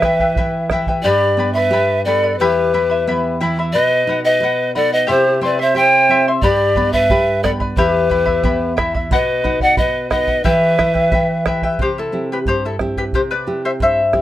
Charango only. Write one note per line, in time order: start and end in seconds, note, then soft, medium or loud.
0.02 0.20 E4 medium
0.02 0.20 B4 medium
0.02 0.19 E5 medium
0.02 0.19 G5 medium
0.20 0.37 E4 soft
0.20 0.37 B4 soft
0.20 0.37 G5 soft
0.37 0.70 E4 medium
0.37 0.71 B4 medium
0.37 0.70 E5 medium
0.37 0.71 G5 medium
0.71 0.88 E4 medium
0.71 0.88 B4 medium
0.71 0.88 E5 medium
0.71 0.87 G5 medium
0.88 1.05 E4 soft
0.88 1.04 B4 soft
0.88 1.03 G5 medium
1.04 1.38 G4 medium
1.04 1.38 B4 medium
1.04 1.38 D5 medium
1.04 1.37 G5 medium
1.04 1.38 B5 medium
1.38 1.55 B4 medium
1.38 1.55 D5 medium
1.38 1.55 G5 medium
1.38 1.54 B5 medium
1.55 1.72 B4 soft
1.55 1.72 D5 soft
1.55 1.72 B5 medium
1.73 2.06 B4 medium
1.73 2.06 D5 medium
1.73 2.05 G5 medium
1.73 2.06 B5 medium
2.07 2.23 B4 medium
2.07 2.23 D5 medium
2.07 2.23 G5 medium
2.07 2.22 B5 medium
2.23 2.40 B4 soft
2.23 2.40 D5 soft
2.23 2.40 B5 medium
2.41 2.73 E4 medium
2.41 2.73 G4 medium
2.41 2.73 E5 medium
2.41 2.73 G5 medium
2.41 2.73 B5 medium
2.74 2.90 E4 medium
2.74 2.90 E5 medium
2.74 2.90 G5 medium
2.74 2.88 B5 medium
2.90 3.07 E4 soft
2.90 3.07 E5 medium
2.90 3.06 B5 medium
3.08 3.40 E4 medium
3.08 3.40 E5 medium
3.08 3.39 G5 medium
3.08 3.41 B5 medium
3.40 3.57 E4 medium
3.40 3.58 E5 medium
3.40 3.57 G5 medium
3.40 3.58 B5 medium
3.59 3.74 E4 soft
3.59 3.75 E5 medium
3.59 3.75 B5 medium
3.75 4.08 B4 medium
3.75 4.08 D#5 medium
3.75 4.08 F#5 medium
4.09 4.25 B4 medium
4.09 4.25 D#5 medium
4.09 4.23 F#5 medium
4.25 4.42 D#5 soft
4.25 4.41 F#5 medium
4.43 4.74 B4 medium
4.43 4.74 D#5 medium
4.43 4.74 F#5 medium
4.75 4.92 B4 medium
4.75 4.92 D#5 medium
4.75 4.91 F#5 medium
4.92 5.08 D#5 soft
4.92 5.07 F#5 medium
5.07 5.41 E4 medium
5.07 5.41 G4 medium
5.07 5.41 E5 medium
5.07 5.40 G5 medium
5.07 5.42 C6 medium
5.42 5.59 E4 medium
5.42 5.59 E5 medium
5.42 5.58 G5 medium
5.42 5.58 C6 medium
5.59 5.75 E4 soft
5.59 5.75 E5 soft
5.59 5.76 C6 medium
5.75 6.09 E4 medium
5.75 6.09 E5 medium
5.75 6.09 G5 medium
5.75 6.10 C6 medium
6.10 6.26 E4 medium
6.10 6.26 E5 medium
6.10 6.26 G5 medium
6.10 6.27 C6 medium
6.28 6.43 E4 soft
6.28 6.43 E5 soft
6.28 6.43 C6 medium
6.43 6.76 G4 medium
6.43 6.75 B4 medium
6.43 6.76 D5 medium
6.43 6.74 G5 medium
6.43 6.76 B5 medium
6.76 6.93 B4 medium
6.76 6.92 D5 medium
6.76 6.93 G5 medium
6.76 6.92 B5 medium
6.93 7.10 B4 soft
6.93 7.09 D5 soft
6.93 7.10 B5 medium
7.10 7.43 B4 medium
7.10 7.44 D5 medium
7.10 7.43 G5 medium
7.10 7.44 B5 medium
7.44 7.60 B4 medium
7.44 7.60 D5 medium
7.44 7.60 G5 medium
7.44 7.59 B5 medium
7.60 7.77 B4 soft
7.60 7.77 D5 soft
7.60 7.77 B5 medium
7.78 8.10 E4 medium
7.78 8.11 G4 medium
7.78 8.10 E5 medium
7.78 8.08 G5 medium
7.78 8.10 B5 medium
8.10 8.26 E4 medium
8.10 8.25 E5 medium
8.10 8.27 G5 medium
8.10 8.24 B5 medium
8.26 8.42 E4 soft
8.26 8.43 E5 soft
8.26 8.43 B5 medium
8.43 8.76 E4 medium
8.43 8.76 E5 medium
8.43 8.75 G5 medium
8.43 8.77 B5 medium
8.77 8.94 E4 medium
8.77 8.94 E5 medium
8.77 8.94 G5 medium
8.77 8.93 B5 medium
8.94 9.11 E4 soft
8.94 9.11 E5 soft
8.94 9.11 B5 medium
9.12 9.43 B4 medium
9.12 9.43 D#5 medium
9.12 9.44 F#5 medium
9.44 9.61 B4 medium
9.44 9.61 D#5 medium
9.44 9.60 F#5 medium
9.61 9.77 D#5 soft
9.61 9.77 F#5 medium
9.77 10.09 B4 medium
9.77 10.10 D#5 medium
9.77 10.11 F#5 medium
10.10 10.27 B4 medium
10.10 10.28 D#5 medium
10.10 10.26 F#5 medium
10.28 10.44 D#5 soft
10.28 10.44 F#5 medium
10.45 10.77 E4 medium
10.45 10.78 G4 medium
10.45 10.78 B4 medium
10.45 10.77 E5 medium
10.45 10.78 G5 medium
10.78 10.94 E4 medium
10.78 10.94 B4 medium
10.78 10.95 E5 medium
10.78 10.92 G5 medium
10.94 11.12 E4 soft
10.94 11.11 B4 soft
10.94 11.11 G5 medium
11.12 11.46 E4 medium
11.12 11.46 B4 medium
11.12 11.45 E5 medium
11.12 11.46 G5 medium
11.46 11.63 E4 medium
11.46 11.63 B4 medium
11.46 11.62 E5 medium
11.46 11.62 G5 medium
11.63 11.80 E4 soft
11.63 11.80 B4 soft
11.63 11.79 G5 medium
11.82 11.98 G4 medium
11.82 11.96 C5 medium
11.98 12.28 E4 soft
11.98 12.28 A4 medium
12.32 12.37 G4 soft
12.32 12.38 B4 medium
12.48 12.62 G4 medium
12.48 12.64 C5 medium
12.65 12.74 E4 medium
12.65 12.74 A4 medium
12.98 13.03 G4 medium
12.98 13.03 B4 medium
13.15 13.20 G4 medium
13.15 13.20 C5 medium
13.31 13.61 B4 medium
13.31 13.61 D5 medium
13.65 13.70 C5 medium
13.65 13.70 E5 medium
13.82 14.22 C5 medium
13.82 14.22 E5 medium